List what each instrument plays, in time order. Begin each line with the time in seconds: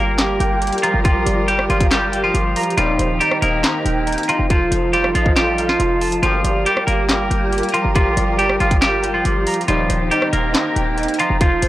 Already playing: 808-style bass G1, string section G3 F4 A#4, clean electric guitar A#3 A#4, tine electric piano G4 D5 F5
0.18 tine electric piano G4, snare, clap, closed hi-hat
0.40 808-style bass G1, tine electric piano G5, closed hi-hat
0.62 tine electric piano G4, closed hi-hat
0.67 closed hi-hat
0.73 closed hi-hat
0.78 closed hi-hat
0.83 clean electric guitar F3 F4, tine electric piano A#5, closed hi-hat
0.94 808-style bass G1
1.04 clean electric guitar F3 F4, tine electric piano G4, kick, closed hi-hat
1.16 808-style bass A#1
1.26 808-style bass G1, tine electric piano D5, closed hi-hat
1.48 clean electric guitar G3 G4, tine electric piano G4, closed hi-hat
1.59 cross-stick
1.70 808-style bass G1, clean electric guitar F3 F4, tine electric piano F5, closed hi-hat
1.80 kick, closed hi-hat
1.91 clean electric guitar G3 G4, tine electric piano G4, snare, clap, closed hi-hat
2.12 tine electric piano G5, closed hi-hat
2.24 clean electric guitar F3 F4
2.34 808-style bass G1, tine electric piano G4, closed hi-hat
2.56 tine electric piano A#5, closed hi-hat, open hi-hat
2.63 closed hi-hat
2.70 closed hi-hat
2.77 808-style bass D#1, brass ensemble D#2 C3 G3, string section D#3 C4 G4, clean electric guitar F3 F4, tine electric piano D#4, closed hi-hat
2.99 808-style bass D#1, tine electric piano C5, closed hi-hat
3.20 clean electric guitar G3 G4, tine electric piano D#4, closed hi-hat
3.31 cross-stick
3.42 808-style bass D#1, clean electric guitar A#3 A#4, tine electric piano D#5, closed hi-hat
3.63 tine electric piano D#4, snare, clap, closed hi-hat
3.85 808-style bass D#1, tine electric piano G5, closed hi-hat
4.07 tine electric piano D#4, closed hi-hat
4.12 closed hi-hat
4.18 closed hi-hat
4.23 closed hi-hat
4.28 clean electric guitar F3 F4, tine electric piano A#5, closed hi-hat
4.39 808-style bass F1
4.50 string section F3 D#4 A4, clean electric guitar F3 F4, tine electric piano F4, kick, closed hi-hat
4.61 808-style bass D#1
4.71 808-style bass F1, tine electric piano C5, closed hi-hat
4.93 clean electric guitar G3 G4, tine electric piano F4, closed hi-hat
5.04 cross-stick
5.15 808-style bass A1, clean electric guitar F3 F4, tine electric piano D#5, closed hi-hat
5.26 kick
5.36 clean electric guitar G3 G4, tine electric piano F4, snare, clap, closed hi-hat
5.58 tine electric piano F5, closed hi-hat
5.69 clean electric guitar F3 F4, snare
5.80 808-style bass F1, tine electric piano F4, closed hi-hat
6.01 tine electric piano A5, closed hi-hat, open hi-hat
6.12 closed hi-hat
6.23 808-style bass G1, brass ensemble D2 A#2 F3, clean electric guitar F3 F4, string section G3 F4 A#4, tine electric piano G4, closed hi-hat
6.44 808-style bass G1, tine electric piano D5, closed hi-hat
6.66 clean electric guitar G3 G4, tine electric piano G4, closed hi-hat
6.77 cross-stick
6.87 808-style bass G1, clean electric guitar A#3 A#4, tine electric piano F5, closed hi-hat
7.09 tine electric piano G4, snare, clap, closed hi-hat
7.31 808-style bass G1, tine electric piano G5, closed hi-hat
7.53 tine electric piano G4, closed hi-hat
7.58 closed hi-hat
7.63 closed hi-hat
7.69 closed hi-hat
7.74 clean electric guitar F3 F4, tine electric piano A#5, closed hi-hat
7.85 808-style bass G1
7.95 clean electric guitar F3 F4, tine electric piano G4, kick, closed hi-hat
8.06 808-style bass A#1
8.17 808-style bass G1, tine electric piano D5, closed hi-hat
8.39 clean electric guitar G3 G4, tine electric piano G4, closed hi-hat
8.49 cross-stick
8.60 808-style bass G1, clean electric guitar F3 F4, tine electric piano F5, closed hi-hat
8.71 kick, closed hi-hat
8.82 clean electric guitar G3 G4, tine electric piano G4, snare, clap, closed hi-hat
9.03 tine electric piano G5, closed hi-hat
9.14 clean electric guitar F3 F4
9.25 808-style bass G1, tine electric piano G4, closed hi-hat
9.47 tine electric piano A#5, closed hi-hat, open hi-hat
9.54 closed hi-hat
9.61 closed hi-hat
9.68 808-style bass D#1, brass ensemble D#2 C3 G3, string section D#3 C4 G4, clean electric guitar F3 F4, tine electric piano D#4, closed hi-hat
9.90 808-style bass D#1, tine electric piano C5, closed hi-hat
10.11 clean electric guitar G3 G4, tine electric piano D#4, closed hi-hat
10.22 cross-stick
10.33 808-style bass D#1, clean electric guitar A#3 A#4, tine electric piano D#5, closed hi-hat
10.54 tine electric piano D#4, snare, clap, closed hi-hat
10.76 808-style bass D#1, tine electric piano G5, closed hi-hat
10.97 tine electric piano D#4, closed hi-hat
11.03 closed hi-hat
11.08 closed hi-hat
11.14 closed hi-hat
11.18 clean electric guitar F3 F4, tine electric piano A#5, closed hi-hat
11.30 808-style bass F1
11.41 string section F3 D#4 A4, clean electric guitar F3 F4, tine electric piano F4, kick, closed hi-hat
11.52 808-style bass D#1
11.62 808-style bass F1, tine electric piano C5, closed hi-hat